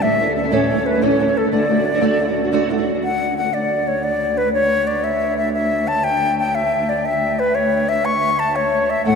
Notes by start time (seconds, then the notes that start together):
Already playing: D2
0.02 A2 E3 A3 C#4 A4 E5
0.19 E3 A3 C#4 A4
0.27 A3 C#4 A4
0.36 E5
0.43 A3 C#4 A4
0.51 A2 E3 A3 C#4 A4 C#5
0.70 E3 A3 C#4 A4
0.77 A3 C#4 A4
0.86 B4
0.93 A3 C#4 A4
1.01 A2 E3 A3 C#4 A4 C#5
1.19 E3 A3 C#4 A4
1.28 A3 C#4 A4
1.37 A4
1.43 A3 C#4 A4
1.51 D3 A3 D4 F#4 D5
1.69 D3 A3 D4 F#4
1.77 A3 D4 F#4
1.93 A3 D4 F#4
2.00 D3 A3 D4 F#4
2.18 D3 A3 D4 F#4
2.27 A3 D4 F#4
2.43 A3 D4 F#4
2.52 D3 A3 D4 F#4
2.69 D3 A3 D4 F#4
2.78 A3 D4 F#4
2.94 A3 D4 F#4
3.02 D2 F#5
3.37 F#5
3.54 D5
3.87 C#5
4.03 D5
4.37 B4
4.53 C#5
4.87 D5
5.04 E5
5.37 E5
5.53 E5
5.88 A5
6.04 G5
6.39 G5
6.55 E5
6.89 D5
7.05 E5
7.39 B4
7.55 C#5
7.89 E5
8.05 C#6
8.39 A5
8.56 C#5
8.90 E5
9.05 D2 A2 E3 A3 B3 A4 F#5